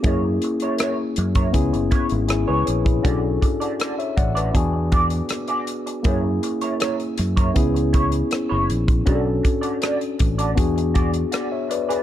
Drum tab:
HH |x-xxx-xxxxxxx-xx|x-xxxxxxx-xxxxxx|x-xxxxxxxxxxx-xx|x-xxxxxxxxxxx-xx|
SD |----r-----r-r---|----r-------r---|----r-----r-r---|----r-------r---|
BD |o------oo-o----o|o-o---o-o-o-----|o------oo-o----o|o-o---o-o-o-----|